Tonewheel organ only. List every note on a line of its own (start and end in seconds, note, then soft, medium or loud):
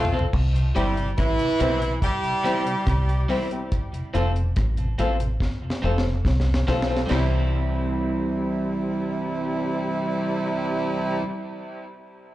0.55 0.65 C3 medium
0.75 0.86 E3 medium
0.75 0.86 G3 medium
0.75 0.86 C4 medium
0.97 1.08 C3 medium
1.39 1.50 C3 medium
1.59 1.71 E3 medium
1.59 1.71 G3 medium
1.59 1.71 C4 medium
1.81 1.92 C3 medium
2.23 2.34 C3 medium
2.44 2.55 E3 medium
2.44 2.55 G3 medium
2.44 2.55 C4 medium
2.65 2.76 C3 medium
3.08 3.18 C3 medium
3.28 3.40 E3 medium
3.28 3.40 G3 medium
3.28 3.40 C4 medium
3.93 4.03 F2 medium
3.93 4.04 C3 medium
4.14 4.25 F3 medium
4.14 4.25 A3 medium
4.14 4.25 C4 medium
4.35 4.46 F2 medium
4.35 4.46 C3 medium
4.78 4.88 F2 medium
4.78 4.88 C3 medium
4.98 5.09 F3 medium
4.98 5.09 A3 medium
4.98 5.09 C4 medium
5.19 5.30 F2 medium
5.19 5.30 C3 medium
5.62 5.73 F2 medium
5.62 5.73 C3 medium
5.83 5.94 F3 medium
5.83 5.94 A3 medium
5.83 5.94 C4 medium
6.05 6.15 F2 medium
6.05 6.15 C3 medium
6.47 6.57 F2 medium
6.47 6.57 C3 medium
6.69 6.79 F3 medium
6.69 6.79 A3 medium
6.69 6.79 C4 medium
7.09 11.23 E3 medium
7.09 11.24 G3 medium
7.09 11.24 C4 medium